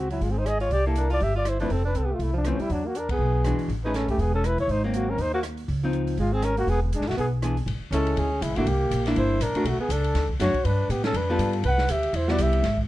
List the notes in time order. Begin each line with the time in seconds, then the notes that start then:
Already playing: C#2
0.00 F#4
0.10 F#3 E4, open hi-hat
0.21 G#1 G#3 F4, open hi-hat
0.30 C4 G#4
0.39 D#4 C5
0.46 G#4 D#5, cross-stick, closed hi-hat
0.60 F4 C#5, open hi-hat
0.70 C2 G4 D5, open hi-hat
0.86 A#3 E4 G4 A4
0.95 D4 A#4, closed hi-hat
1.10 F4 D5, open hi-hat
1.20 G1 G4 E5, open hi-hat
1.36 F4 D5
1.45 E4 C5, cross-stick, closed hi-hat
1.60 F3 A3 C4 D4 E4 B4, open hi-hat
1.70 F1 C4 A4, open hi-hat
1.85 D4 B4
1.95 C2 C4 A4, closed hi-hat
2.03 B3 G4
2.12 A3 F4
2.19 C2 A3, open hi-hat
2.23 E4
2.33 F3 D4
2.45 E3 F3 A3 C4 E4, cross-stick, closed hi-hat
2.49 C#4
2.58 G3 E4, muted upright bass stroke, open hi-hat
2.70 E2 F#3 D4, open hi-hat
2.85 A#3 F#4
2.95 D4 A#4, closed hi-hat
3.09 B3 G#4, kick, ride
3.19 B1
3.44 E3 G#3 D4 F#4, cross-stick, closed hi-hat
3.59 open hi-hat
3.68 A1, open hi-hat
3.84 A3 C#4 D#4 G#4 B4
3.94 C#4 A4, snare, closed hi-hat
4.08 G#1 A3 G4, kick, open hi-hat
4.18 E1 B3 G#4, open hi-hat
4.34 C#4 A4
4.44 E4 B4, cross-stick, closed hi-hat
4.58 D#2 E4 C#5, open hi-hat
4.68 G#1 D#4 C5, open hi-hat
4.84 F#3 A#3 C4 D#4
4.94 A#3 F#4, closed hi-hat
5.09 C#4 A#4
5.17 D#2 D#4, open hi-hat
5.22 C5
5.34 A#3 F#4
5.43 cross-stick, closed hi-hat
5.57 open hi-hat
5.68 C#2, open hi-hat
5.83 F3 C4 D#4
5.93 closed hi-hat
6.07 open hi-hat
6.17 G#1 G#3 F4, open hi-hat
6.33 C4 G#4
6.42 C#4 A#4, cross-stick, closed hi-hat
6.57 A#3 F#4, open hi-hat
6.67 E1 B3 G#4, open hi-hat
6.82 D3 B3
6.93 G#3 D4, closed hi-hat
7.00 G#1, snare
7.07 B1 A3 F#4, snare, open hi-hat
7.17 B1 B3 G#4, open hi-hat
7.42 E3 B3 D4 G#4, cross-stick, closed hi-hat
7.57 open hi-hat
7.66 A1, ride
7.80 muted upright bass stroke
7.91 C#2 G#3 C#4 E4 A4, hi-hat pedal, ride
8.07 ride
8.16 D2 C#4 G#4, ride
8.41 C#2 G#3 E4, hi-hat pedal, ride
8.49 A1
8.56 G#1 A3 A#3 D4 E4 F#4, ride
8.65 C2 A#3 G4, ride
8.91 A#1, hi-hat pedal, ride
9.06 A#3 D4 E4, snare, ride
9.15 G1 E4 C5, ride
9.40 A1 D4 A#4, hi-hat pedal, ride
9.54 A3 D4 F#4, muted upright bass stroke, ride
9.64 B1 A3 F#4, ride
9.78 B3 G#4, muted upright bass stroke
9.89 C#2 D4 A4, hi-hat pedal, ride
10.04 ride
10.14 D2, snare, ride
10.29 kick
10.40 F#2 A3 D4 F#4 C#5, snare, hi-hat pedal, ride
10.54 muted upright bass stroke, kick, ride
10.65 G2 D4 B4, ride
10.89 A2 B3 G4, hi-hat pedal, ride
11.04 C#4 A4, snare, ride
11.13 F2 D4 B4, ride
11.30 G3 B3 F4 A4
11.38 G2, hi-hat pedal, ride
11.53 ride
11.63 C2 B4, ride
11.68 F#5
11.78 snare
11.89 D2 G4 E5, hi-hat pedal, ride
12.03 ride
12.13 E2 E4 C5, ride
12.28 G3 B3 E4 F#4 D5, snare
12.38 C2 G4, hi-hat pedal, ride
12.42 E5
12.53 ride
12.62 G#1, snare, ride
12.77 kick